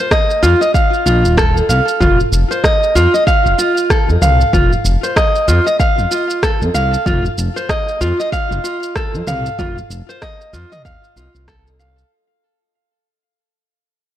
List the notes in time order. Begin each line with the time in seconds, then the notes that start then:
0.00 C5
0.11 D#5, kick, cross-stick, shaker
0.30 shaker
0.43 F2 F4, shaker
0.61 D#5, shaker
0.74 F5, kick, shaker
0.94 shaker
1.06 A#1 F4, shaker
1.25 D#1, shaker
1.37 A4, kick, cross-stick, shaker
1.57 shaker
1.69 C2 F5, shaker
1.88 shaker
2.00 F1 F4, kick, mid tom, shaker
2.20 shaker
2.32 F1, shaker
2.51 C5, shaker
2.64 D#5, kick, cross-stick, shaker
2.83 shaker
2.95 F2 F4, shaker
3.14 D#5, shaker
3.27 F5, kick, shaker
3.46 F1, shaker
3.58 F4, shaker
3.77 shaker
3.90 A4, kick, cross-stick, shaker
4.09 F2, shaker
4.21 C2 F5, mid tom, shaker
4.41 shaker
4.53 F1 F4, kick, mid tom, shaker
4.73 shaker
4.85 F1, shaker
5.03 C5, shaker
5.16 D#5, kick, cross-stick, shaker
5.36 shaker
5.48 F2 F4, shaker
5.66 D#5, shaker
5.80 F5, kick, shaker
5.98 F1, shaker
6.11 F4, shaker
6.30 shaker
6.43 A4, kick, cross-stick, shaker
6.61 F2, shaker
6.74 C2 F5, shaker
6.94 shaker
7.06 F1 F4, kick, mid tom, shaker
7.25 shaker
7.38 F1, shaker
7.56 C5, shaker
7.69 D#5, kick, cross-stick, shaker
7.89 shaker
8.01 F2 F4, shaker
8.20 D#5, shaker
8.32 F5, kick, shaker
8.51 F1, shaker
8.64 F4, shaker
8.83 shaker
8.96 A4, kick, cross-stick, shaker
9.14 F2, shaker
9.27 C2 F5, mid tom, shaker
9.46 shaker
9.59 F1 F4, kick, mid tom, shaker
9.78 shaker
9.90 F1, shaker
10.09 C5, shaker
10.22 D#5, kick, cross-stick, shaker
10.41 shaker
10.53 F2 F4, shaker
10.72 D#5, mid tom, shaker
10.85 D#1 F5, kick, shaker
11.04 shaker
11.16 C2 F4, shaker
11.35 C2, shaker
11.48 A4, kick, cross-stick, shaker
11.67 shaker
11.79 F5, shaker
11.98 shaker